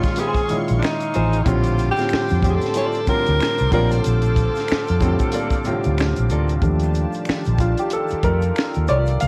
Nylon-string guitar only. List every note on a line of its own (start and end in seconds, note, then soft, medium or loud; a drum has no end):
0.18 0.40 C4 medium
0.18 0.41 F4 medium
0.18 0.41 G#4 medium
0.18 0.41 C5 medium
0.82 muted nylon-string guitar stroke soft
1.14 1.37 C4 medium
1.14 1.37 F4 medium
1.14 1.38 G#4 medium
1.14 1.38 C5 medium
2.75 2.98 C4 medium
2.75 2.98 F4 medium
2.75 2.99 A4 medium
2.75 2.99 D5 loud
3.40 muted nylon-string guitar stroke soft
3.72 3.95 A#3 medium
3.72 3.95 F4 medium
3.72 3.96 A4 medium
3.72 3.96 D5 loud
5.33 5.56 A#3 medium
5.33 5.56 F4 medium
5.33 5.57 A4 medium
5.33 5.57 D5 medium
5.98 muted nylon-string guitar stroke soft
6.30 6.53 A#3 medium
6.30 6.53 F4 medium
6.30 6.54 A4 medium
6.30 6.54 D5 medium
8.24 8.43 A3 medium
8.24 8.43 F4 medium
8.24 8.43 G4 medium
8.24 8.43 D5 medium
8.56 muted nylon-string guitar stroke soft
8.88 9.11 A3 medium
8.88 9.11 F4 medium
8.88 9.12 G4 medium
8.88 9.12 D5 medium